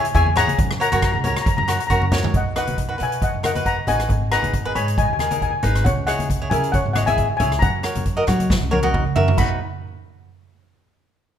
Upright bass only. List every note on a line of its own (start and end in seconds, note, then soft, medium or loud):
0.15 0.49 E2 loud
0.59 0.76 F#2 medium
0.93 1.10 F#2 medium
1.15 1.32 C#2 medium
1.58 1.75 F#2 medium
1.90 2.24 F#2 loud
2.34 2.60 B1 medium
2.68 2.93 B1 medium
3.01 3.27 B2 medium
3.34 3.76 F#2 medium
3.89 4.06 A1 medium
4.10 4.36 G#1 medium
4.44 4.69 G#1 medium
4.75 5.02 G#2 medium
5.09 5.51 D#2 medium
5.64 5.81 G#1 medium
5.86 6.12 C#2 medium
6.19 6.44 C#2 medium
6.52 6.78 C#3 medium
6.86 7.28 G#1 medium
7.40 7.57 C#2 medium
7.62 7.88 F#2 medium
7.96 8.21 F#2 medium
8.28 8.54 F#3 medium
8.62 9.04 C#2 medium
9.16 9.33 F#2 medium
9.38 9.58 B1 medium